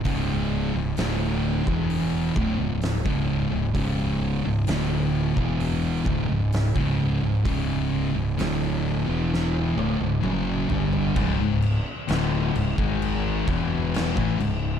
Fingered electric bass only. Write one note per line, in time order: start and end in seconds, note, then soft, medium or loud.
0.05 0.71 C#1 medium
0.75 0.97 C#1 medium
0.98 1.64 D1 medium
1.66 2.32 E1 medium
2.35 2.58 D1 medium
2.60 3.03 C#1 medium
3.05 3.49 C#1 loud
3.51 3.74 C#1 medium
3.74 4.40 C#1 medium
4.46 4.67 C#1 medium
4.68 5.34 D1 medium
5.36 6.03 E1 medium
6.06 6.28 D1 medium
6.31 6.74 C#1 medium
6.76 7.19 C#1 medium
7.22 7.44 C#1 medium
7.45 8.11 C#1 medium
8.15 8.37 C#1 medium
8.39 9.05 D1 medium
9.08 9.74 E1 medium
9.77 9.99 D1 medium
10.01 10.22 C#1 medium
10.24 10.67 F#1 medium
10.70 11.13 G1 medium
11.16 11.38 C#1 medium
11.39 11.83 C#1 medium
12.09 12.52 D1 medium
12.56 12.77 C#1 medium
12.78 13.44 G#1 medium
13.47 14.13 E1 medium
14.16 14.38 A1 loud
14.40 14.80 C#1 medium